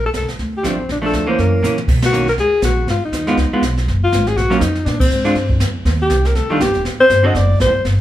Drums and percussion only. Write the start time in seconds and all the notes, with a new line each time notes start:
0.14 kick, snare, hi-hat pedal
0.28 snare
0.39 brush sweep, kick, snare
0.64 kick, snare, hi-hat pedal
0.89 brush sweep, kick, snare
1.13 kick, snare, hi-hat pedal
1.38 brush sweep, kick, snare
1.64 snare, hi-hat pedal
1.78 mid tom
1.88 brush sweep, kick, snare, crash
2.02 snare, ride
2.13 hi-hat pedal
2.28 snare
2.38 brush sweep, kick, snare
2.62 kick, snare, hi-hat pedal
2.87 brush sweep, kick, snare
3.12 kick, snare, hi-hat pedal
3.27 snare
3.37 brush sweep, kick, snare
3.62 kick, snare, hi-hat pedal
3.77 snare
3.87 brush sweep, kick, snare
4.12 kick, snare, hi-hat pedal
4.27 snare
4.37 brush sweep, kick, snare
4.51 snare
4.61 kick, snare, hi-hat pedal
4.75 snare
4.86 brush sweep, kick, snare
5.00 kick, ride
5.11 hi-hat pedal
5.25 snare
5.35 brush sweep, kick, snare
5.50 kick
5.60 kick, snare, hi-hat pedal
5.85 brush sweep, kick, snare
6.10 kick, snare, hi-hat pedal
6.25 snare
6.35 brush sweep, kick, snare
6.60 kick, snare, hi-hat pedal
6.74 snare
6.85 brush sweep, kick, snare
7.10 kick, snare, hi-hat pedal
7.34 brush sweep, kick, snare
7.60 kick, snare, hi-hat pedal
7.85 brush sweep, kick, snare